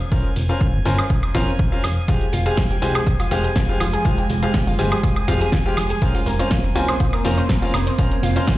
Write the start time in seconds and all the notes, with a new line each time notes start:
Already playing: G#5
0.12 C#4 F4 A#4 C5 F5, kick
0.36 F1, open hi-hat
0.49 C#4 F4 A#4 C5 F5
0.61 kick
0.74 G1
0.85 G1 C#4 F4 A#4 C5 G#5, open hi-hat
0.98 high woodblock
1.10 kick
1.23 high woodblock
1.35 F2 C#4 F4 A#4 C5 F5, kick, open hi-hat
1.59 kick
1.72 C#4 F4 A#4 C5 F5
1.84 F1, open hi-hat, high woodblock
2.08 F3 G3 G#3 F4 G4 C5 F5, kick, closed hi-hat
2.21 closed hi-hat
2.33 F1 F4, open hi-hat
2.46 G#3 F4 G4 G#4 C5 F5, closed hi-hat
2.57 F4, kick, snare, closed hi-hat
2.70 F1 G4, closed hi-hat
2.82 C2 G#3 F4 G4 C5 G#5, open hi-hat
2.95 G#4, closed hi-hat, high woodblock
3.07 kick, closed hi-hat
3.20 F4, high woodblock
3.31 F1 G#3 F4 G4 C5 F5, open hi-hat
3.44 G#4, closed hi-hat
3.56 F4, kick, snare, closed hi-hat
3.69 G#3 F4 G4 C5 F5
3.80 F1 F4, open hi-hat, high woodblock
3.93 G#4, closed hi-hat
4.05 G#3 F4 G4 C5 F5, kick, closed hi-hat
4.18 G4, closed hi-hat
4.29 F1, open hi-hat
4.43 G#3 F4 G4 G#4 C5 F5, closed hi-hat
4.54 kick, snare, closed hi-hat
4.67 G1 F4, closed hi-hat
4.79 G1 G#3 F4 G4 C5 G#5, open hi-hat
4.92 G#4, closed hi-hat, high woodblock
5.03 F4, kick, closed hi-hat
5.16 high woodblock
5.28 F2 G#3 F4 G4 C5 F5, kick, open hi-hat
5.41 G#4, closed hi-hat
5.52 F4, kick, snare, closed hi-hat
5.66 G#3 F4 G4 C5 F5
5.77 F1, open hi-hat, high woodblock
5.90 G#4, closed hi-hat
6.02 C#3 A#3 C4 C#4 F4 A#4 C5 F5, kick, closed hi-hat
6.15 F4, closed hi-hat
6.26 F1 A#4, open hi-hat
6.39 C#4 F4 A#4 C5 F5, closed hi-hat
6.51 F4, kick, snare, closed hi-hat
6.64 F1, closed hi-hat
6.75 C2 C#4 F4 A#4 C5 G#5, open hi-hat
6.88 C5, closed hi-hat, high woodblock
7.00 F4, kick, closed hi-hat
7.13 A#4, high woodblock
7.25 F1 C#4 F4 A#4 C5 F5, open hi-hat
7.38 C5, closed hi-hat
7.49 kick, snare, closed hi-hat
7.62 C#4 F4 A#4 C5 F5
7.74 F1 A#4, open hi-hat, high woodblock
7.87 C5, closed hi-hat
7.98 C#4 F4 A#4 C5 F5, kick, closed hi-hat
8.12 closed hi-hat
8.23 F1 F4, open hi-hat
8.36 C#4 F4 A#4 C5 F5, closed hi-hat
8.47 F4, kick, snare, closed hi-hat